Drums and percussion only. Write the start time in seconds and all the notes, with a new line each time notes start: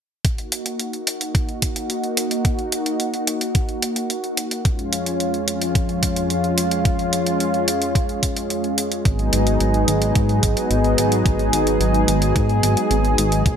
0.25 kick, closed hi-hat
0.38 closed hi-hat
0.52 closed hi-hat
0.66 closed hi-hat
0.80 closed hi-hat
0.93 closed hi-hat
1.07 closed hi-hat
1.21 closed hi-hat
1.35 kick, closed hi-hat
1.49 closed hi-hat
1.62 kick, closed hi-hat
1.76 closed hi-hat
1.90 closed hi-hat
2.04 closed hi-hat
2.17 closed hi-hat
2.31 closed hi-hat
2.45 kick, closed hi-hat
2.59 closed hi-hat
2.72 closed hi-hat
2.86 closed hi-hat
3.00 closed hi-hat
3.14 closed hi-hat
3.27 closed hi-hat
3.41 closed hi-hat
3.55 kick, closed hi-hat
3.69 closed hi-hat
3.82 closed hi-hat
3.96 closed hi-hat
4.10 closed hi-hat
4.24 closed hi-hat
4.37 closed hi-hat
4.51 closed hi-hat
4.65 kick, closed hi-hat
4.79 closed hi-hat
4.93 closed hi-hat
5.06 closed hi-hat
5.20 closed hi-hat
5.34 closed hi-hat
5.48 closed hi-hat
5.62 closed hi-hat
5.75 kick, closed hi-hat
5.89 closed hi-hat
6.03 kick, closed hi-hat
6.16 closed hi-hat
6.30 closed hi-hat
6.44 closed hi-hat
6.58 closed hi-hat
6.71 closed hi-hat
6.85 kick, closed hi-hat
6.99 closed hi-hat
7.13 closed hi-hat
7.27 closed hi-hat
7.40 closed hi-hat
7.54 closed hi-hat
7.68 closed hi-hat
7.82 closed hi-hat
7.95 kick, closed hi-hat
8.09 closed hi-hat
8.23 kick, closed hi-hat
8.37 closed hi-hat
8.50 closed hi-hat
8.64 closed hi-hat
8.78 closed hi-hat
8.92 closed hi-hat
9.05 kick, closed hi-hat
9.19 closed hi-hat
9.33 closed hi-hat
9.47 closed hi-hat
9.60 closed hi-hat
9.74 closed hi-hat
9.88 closed hi-hat
10.02 closed hi-hat
10.15 kick, closed hi-hat
10.29 closed hi-hat
10.43 kick, closed hi-hat
10.57 closed hi-hat
10.71 closed hi-hat
10.84 closed hi-hat
10.98 closed hi-hat
11.12 closed hi-hat
11.26 kick, closed hi-hat
11.39 closed hi-hat
11.53 closed hi-hat
11.67 closed hi-hat
11.81 closed hi-hat
11.94 closed hi-hat
12.08 closed hi-hat
12.22 closed hi-hat
12.36 kick, closed hi-hat
12.49 closed hi-hat
12.63 closed hi-hat
12.77 closed hi-hat
12.91 closed hi-hat
13.05 closed hi-hat
13.18 closed hi-hat
13.32 closed hi-hat
13.46 kick, closed hi-hat